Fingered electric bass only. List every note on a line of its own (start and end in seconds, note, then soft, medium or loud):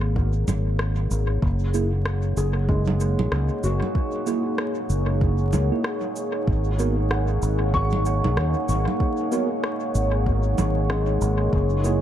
0.00 0.45 G#1 medium
0.48 1.08 G#1 medium
1.11 1.39 G#1 medium
1.42 2.35 F#1 medium
2.37 3.15 F#1 medium
3.19 3.30 A#1 medium
3.32 3.48 C#2 medium
3.63 3.80 F#1 medium
4.90 5.50 F#1 medium
5.53 5.70 C#2 medium
6.48 7.40 G#1 medium
7.42 8.21 G#1 medium
8.24 8.36 B1 medium
8.37 8.54 D#2 medium
8.69 8.85 G#1 medium
9.95 10.56 G#1 medium
10.58 11.19 G#1 medium
11.21 11.50 G#1 medium
11.53 12.01 F#1 medium